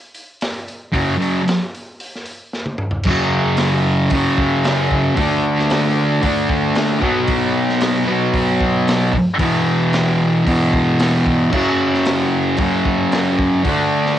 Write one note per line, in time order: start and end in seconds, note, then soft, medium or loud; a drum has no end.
0.15 open hi-hat medium
0.41 snare loud
0.41 open hi-hat medium
0.68 open hi-hat soft
0.92 1.14 F#2 medium
0.92 1.15 C#3 loud
0.92 1.15 F#3 loud
0.92 kick loud
0.92 open hi-hat medium
1.18 1.40 F#2 loud
1.18 1.41 C#3 medium
1.18 1.41 F#3 medium
1.22 open hi-hat medium
1.48 snare loud
1.48 open hi-hat medium
1.75 open hi-hat medium
2.00 open hi-hat medium
2.16 snare soft
2.26 open hi-hat medium
2.53 snare medium
2.66 high tom medium
2.78 mid tom medium
2.91 floor tom medium
3.03 4.10 F#2 medium
3.03 kick loud
3.03 crash loud
3.09 4.12 C#3 loud
3.09 4.15 F#3 loud
3.57 snare loud
3.57 open hi-hat medium
4.10 5.16 F#2 medium
4.10 5.16 C#3 medium
4.10 kick loud
4.10 open hi-hat medium
4.16 5.19 F#3 medium
4.38 kick medium
4.64 snare loud
4.64 open hi-hat medium
4.91 kick medium
5.16 6.21 D3 loud
5.16 6.23 A3 loud
5.16 kick loud
5.16 open hi-hat medium
5.21 6.26 D4 loud
5.59 snare soft
5.70 snare loud
5.70 open hi-hat medium
6.22 6.99 D3 medium
6.22 7.02 A3 medium
6.22 kick loud
6.22 open hi-hat medium
6.27 7.03 D4 medium
6.49 kick loud
6.75 snare loud
6.75 open hi-hat medium
7.00 8.06 B2 medium
7.00 8.07 F#3 loud
7.00 kick medium
7.05 8.06 B3 loud
7.27 kick loud
7.27 open hi-hat medium
7.69 snare soft
7.81 snare loud
7.81 open hi-hat medium
8.06 9.13 F#3 medium
8.06 9.12 B3 loud
8.12 9.15 B2 medium
8.34 kick loud
8.34 open hi-hat medium
8.61 kick medium
8.88 snare loud
8.88 open hi-hat medium
9.13 kick medium
9.38 10.44 E2 loud
9.38 10.45 B2 loud
9.38 kick loud
9.38 open hi-hat medium
9.43 10.46 E3 loud
9.93 snare loud
9.93 open hi-hat medium
10.45 11.50 E2 medium
10.45 11.52 B2 medium
10.45 kick loud
10.45 open hi-hat medium
10.50 11.53 E3 medium
10.73 kick medium
11.00 snare loud
11.00 open hi-hat medium
11.26 kick medium
11.51 12.56 F#2 medium
11.51 12.58 C#3 loud
11.51 kick loud
11.51 crash loud
11.56 12.62 F#3 loud
11.94 snare soft
12.05 snare loud
12.05 open hi-hat medium
12.57 13.63 F#2 medium
12.57 13.64 C#3 medium
12.57 kick loud
12.57 open hi-hat medium
12.63 13.67 F#3 medium
12.86 kick medium
13.12 snare loud
13.12 open hi-hat medium
13.39 kick medium
13.64 14.19 D3 medium
13.64 14.19 A3 loud
13.64 kick loud
13.64 open hi-hat medium
13.69 14.19 D4 loud
14.06 snare soft